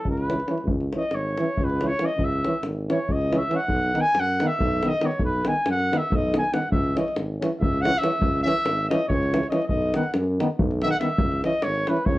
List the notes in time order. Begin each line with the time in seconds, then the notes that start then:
0.05 C#2, davul low
0.10 B4
0.17 davul high
0.28 E3 C#4, davul high
0.40 davul high
0.47 E3 C#4, davul high
0.58 davul high
0.64 C#2, davul low
0.81 davul high
0.93 E3 C#4, davul high
0.97 D#5
1.03 davul high
1.11 G#1 C#5, davul high
1.37 E3 C#4, davul high
1.57 C#2, davul low
1.64 B4
1.69 davul high
1.81 E3 C#4, davul high
1.87 C#5, davul high
1.99 E3 C#4, davul high
2.05 D#5, davul high
2.18 C#2, davul low
2.24 E5
2.32 davul high
2.44 E3 C#4, davul high
2.54 davul high
2.63 G#1, davul high
2.89 E3 C#4 C#5, davul high
3.08 C#2 D#5, davul low
3.21 davul high
3.31 E3 C#4, davul high
3.37 E5
3.43 davul high
3.50 E3 C#4, davul high
3.56 F#5
3.60 davul high
3.68 B1, davul low
3.83 davul high
3.94 D#3 B3, davul high
4.01 G#5
4.05 davul high
4.15 F#2, davul high
4.20 F#5
4.40 D#3 B3, davul high
4.47 E5
4.59 B1, davul low
4.71 davul high
4.83 D#3 B3, davul high
4.88 D#5, davul high
5.01 D#3 B3, davul high
5.06 C#5
5.12 davul high
5.19 B1, davul low
5.25 B4
5.33 davul high
5.45 D#3 B3 G#5, davul high
5.56 davul high
5.66 F#2, davul high
5.71 F#5
5.80 davul high
5.92 D#3 B3, davul high
5.97 E5
6.11 B1, davul low
6.15 D#5
6.33 D#3 B3, davul high
6.38 G#5
6.45 davul high
6.53 D#3 B3 F#5, davul high
6.62 davul high
6.72 C#2 E5, davul low
6.84 davul high
6.96 E3 C#4 D#5, davul high
7.08 davul high
7.15 G#1, davul high
7.41 E3 C#4, davul high
7.60 C#2 E5, davul low
7.73 davul high
7.82 E3 C#4 F#5, davul high
7.95 E5, davul high
8.02 E3 C#4, davul high
8.12 davul high
8.20 C#2, davul low
8.34 davul high
8.43 E3 C#4 E5
8.48 davul high
8.57 davul high
8.65 G#1, davul high
8.89 E3 C#4 D#5, davul high
9.08 C#2 C#5, davul low
9.23 davul high
9.33 E3 C#4, davul high
9.43 davul high
9.49 E3 C#4 D#5, davul high
9.62 davul high
9.67 B1 D#5, davul low
9.82 davul high
9.94 D#3 B3 F#5, davul high
10.03 davul high
10.14 F#2, davul high
10.39 D#3 B3, davul high
10.59 B1, davul low
10.71 davul high
10.82 D#3 B3 E5, davul high
10.90 F#5
10.99 D#3 B3 E5, davul high
11.09 davul high
11.18 C#2, davul low
11.32 davul high
11.44 E3 C#4 D#5, davul high
11.53 davul high
11.62 G#1 C#5, davul high
11.75 davul high
11.87 E3 C#4 B4, davul high
11.97 davul high
12.06 C#2 C#5, davul low